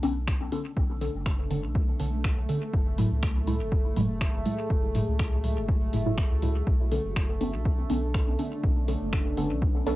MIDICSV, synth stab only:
0, 0, Header, 1, 2, 480
1, 0, Start_track
1, 0, Key_signature, 2, "minor"
1, 0, Tempo, 491803
1, 751, Time_signature, 4, 2, 24, 8
1, 9718, End_track
2, 0, Start_track
2, 0, Title_t, "Synth stab"
2, 0, Program_c, 0, 62
2, 29, Note_on_c, 0, 59, 83
2, 29, Note_on_c, 0, 61, 85
2, 29, Note_on_c, 0, 69, 102
2, 30, Note_on_c, 0, 50, 91
2, 128, Note_off_c, 0, 50, 0
2, 128, Note_off_c, 0, 59, 0
2, 128, Note_off_c, 0, 61, 0
2, 128, Note_off_c, 0, 69, 0
2, 510, Note_on_c, 0, 50, 83
2, 510, Note_on_c, 0, 59, 73
2, 510, Note_on_c, 0, 61, 77
2, 510, Note_on_c, 0, 69, 91
2, 608, Note_off_c, 0, 61, 0
2, 609, Note_off_c, 0, 50, 0
2, 609, Note_off_c, 0, 59, 0
2, 609, Note_off_c, 0, 69, 0
2, 990, Note_on_c, 0, 50, 84
2, 990, Note_on_c, 0, 59, 78
2, 990, Note_on_c, 0, 61, 80
2, 990, Note_on_c, 0, 69, 93
2, 1088, Note_off_c, 0, 59, 0
2, 1089, Note_off_c, 0, 50, 0
2, 1089, Note_off_c, 0, 61, 0
2, 1089, Note_off_c, 0, 69, 0
2, 1470, Note_on_c, 0, 50, 81
2, 1470, Note_on_c, 0, 59, 76
2, 1470, Note_on_c, 0, 61, 74
2, 1470, Note_on_c, 0, 69, 93
2, 1568, Note_off_c, 0, 59, 0
2, 1569, Note_off_c, 0, 50, 0
2, 1569, Note_off_c, 0, 61, 0
2, 1569, Note_off_c, 0, 69, 0
2, 1951, Note_on_c, 0, 50, 96
2, 1951, Note_on_c, 0, 59, 84
2, 1951, Note_on_c, 0, 61, 83
2, 1951, Note_on_c, 0, 69, 98
2, 2049, Note_off_c, 0, 50, 0
2, 2049, Note_off_c, 0, 59, 0
2, 2049, Note_off_c, 0, 61, 0
2, 2049, Note_off_c, 0, 69, 0
2, 2430, Note_on_c, 0, 50, 85
2, 2430, Note_on_c, 0, 59, 75
2, 2430, Note_on_c, 0, 61, 76
2, 2430, Note_on_c, 0, 69, 94
2, 2528, Note_off_c, 0, 59, 0
2, 2529, Note_off_c, 0, 50, 0
2, 2529, Note_off_c, 0, 61, 0
2, 2529, Note_off_c, 0, 69, 0
2, 2910, Note_on_c, 0, 45, 84
2, 2910, Note_on_c, 0, 54, 79
2, 2910, Note_on_c, 0, 56, 78
2, 2910, Note_on_c, 0, 64, 92
2, 3009, Note_off_c, 0, 45, 0
2, 3009, Note_off_c, 0, 54, 0
2, 3009, Note_off_c, 0, 56, 0
2, 3009, Note_off_c, 0, 64, 0
2, 3390, Note_on_c, 0, 45, 81
2, 3390, Note_on_c, 0, 54, 72
2, 3390, Note_on_c, 0, 56, 76
2, 3391, Note_on_c, 0, 64, 90
2, 3489, Note_off_c, 0, 45, 0
2, 3489, Note_off_c, 0, 54, 0
2, 3489, Note_off_c, 0, 56, 0
2, 3489, Note_off_c, 0, 64, 0
2, 3870, Note_on_c, 0, 45, 90
2, 3871, Note_on_c, 0, 54, 85
2, 3871, Note_on_c, 0, 56, 87
2, 3871, Note_on_c, 0, 64, 101
2, 3969, Note_off_c, 0, 45, 0
2, 3969, Note_off_c, 0, 54, 0
2, 3969, Note_off_c, 0, 56, 0
2, 3969, Note_off_c, 0, 64, 0
2, 4350, Note_on_c, 0, 45, 82
2, 4350, Note_on_c, 0, 54, 79
2, 4350, Note_on_c, 0, 56, 77
2, 4350, Note_on_c, 0, 64, 94
2, 4448, Note_off_c, 0, 45, 0
2, 4448, Note_off_c, 0, 54, 0
2, 4449, Note_off_c, 0, 56, 0
2, 4449, Note_off_c, 0, 64, 0
2, 4830, Note_on_c, 0, 45, 87
2, 4830, Note_on_c, 0, 54, 77
2, 4830, Note_on_c, 0, 56, 78
2, 4830, Note_on_c, 0, 64, 97
2, 4928, Note_off_c, 0, 54, 0
2, 4929, Note_off_c, 0, 45, 0
2, 4929, Note_off_c, 0, 56, 0
2, 4929, Note_off_c, 0, 64, 0
2, 5309, Note_on_c, 0, 64, 91
2, 5310, Note_on_c, 0, 45, 84
2, 5310, Note_on_c, 0, 54, 76
2, 5310, Note_on_c, 0, 56, 74
2, 5408, Note_off_c, 0, 56, 0
2, 5408, Note_off_c, 0, 64, 0
2, 5409, Note_off_c, 0, 45, 0
2, 5409, Note_off_c, 0, 54, 0
2, 5790, Note_on_c, 0, 45, 95
2, 5790, Note_on_c, 0, 54, 86
2, 5790, Note_on_c, 0, 56, 85
2, 5790, Note_on_c, 0, 64, 103
2, 5889, Note_off_c, 0, 45, 0
2, 5889, Note_off_c, 0, 54, 0
2, 5889, Note_off_c, 0, 56, 0
2, 5889, Note_off_c, 0, 64, 0
2, 5914, Note_on_c, 0, 45, 97
2, 5914, Note_on_c, 0, 54, 90
2, 5914, Note_on_c, 0, 56, 90
2, 5914, Note_on_c, 0, 64, 106
2, 6006, Note_off_c, 0, 45, 0
2, 6006, Note_off_c, 0, 54, 0
2, 6006, Note_off_c, 0, 56, 0
2, 6006, Note_off_c, 0, 64, 0
2, 6270, Note_on_c, 0, 45, 93
2, 6270, Note_on_c, 0, 54, 84
2, 6270, Note_on_c, 0, 56, 84
2, 6270, Note_on_c, 0, 64, 104
2, 6368, Note_off_c, 0, 64, 0
2, 6369, Note_off_c, 0, 45, 0
2, 6369, Note_off_c, 0, 54, 0
2, 6369, Note_off_c, 0, 56, 0
2, 6750, Note_on_c, 0, 59, 79
2, 6750, Note_on_c, 0, 61, 81
2, 6750, Note_on_c, 0, 69, 97
2, 6751, Note_on_c, 0, 50, 87
2, 6849, Note_off_c, 0, 50, 0
2, 6849, Note_off_c, 0, 59, 0
2, 6849, Note_off_c, 0, 61, 0
2, 6849, Note_off_c, 0, 69, 0
2, 7230, Note_on_c, 0, 50, 82
2, 7230, Note_on_c, 0, 69, 93
2, 7231, Note_on_c, 0, 59, 76
2, 7231, Note_on_c, 0, 61, 77
2, 7329, Note_off_c, 0, 50, 0
2, 7329, Note_off_c, 0, 59, 0
2, 7329, Note_off_c, 0, 61, 0
2, 7329, Note_off_c, 0, 69, 0
2, 7710, Note_on_c, 0, 50, 92
2, 7710, Note_on_c, 0, 59, 84
2, 7710, Note_on_c, 0, 61, 85
2, 7710, Note_on_c, 0, 69, 105
2, 7808, Note_off_c, 0, 50, 0
2, 7809, Note_off_c, 0, 59, 0
2, 7809, Note_off_c, 0, 61, 0
2, 7809, Note_off_c, 0, 69, 0
2, 8189, Note_on_c, 0, 50, 83
2, 8190, Note_on_c, 0, 59, 76
2, 8190, Note_on_c, 0, 61, 77
2, 8190, Note_on_c, 0, 69, 92
2, 8288, Note_off_c, 0, 50, 0
2, 8288, Note_off_c, 0, 59, 0
2, 8288, Note_off_c, 0, 61, 0
2, 8288, Note_off_c, 0, 69, 0
2, 8669, Note_on_c, 0, 59, 80
2, 8669, Note_on_c, 0, 61, 79
2, 8669, Note_on_c, 0, 69, 96
2, 8670, Note_on_c, 0, 50, 88
2, 8768, Note_off_c, 0, 50, 0
2, 8768, Note_off_c, 0, 59, 0
2, 8768, Note_off_c, 0, 61, 0
2, 8768, Note_off_c, 0, 69, 0
2, 9149, Note_on_c, 0, 50, 86
2, 9149, Note_on_c, 0, 61, 74
2, 9149, Note_on_c, 0, 69, 91
2, 9150, Note_on_c, 0, 59, 75
2, 9248, Note_off_c, 0, 50, 0
2, 9248, Note_off_c, 0, 59, 0
2, 9248, Note_off_c, 0, 61, 0
2, 9248, Note_off_c, 0, 69, 0
2, 9629, Note_on_c, 0, 50, 92
2, 9629, Note_on_c, 0, 59, 85
2, 9629, Note_on_c, 0, 61, 84
2, 9629, Note_on_c, 0, 69, 104
2, 9718, Note_off_c, 0, 50, 0
2, 9718, Note_off_c, 0, 59, 0
2, 9718, Note_off_c, 0, 61, 0
2, 9718, Note_off_c, 0, 69, 0
2, 9718, End_track
0, 0, End_of_file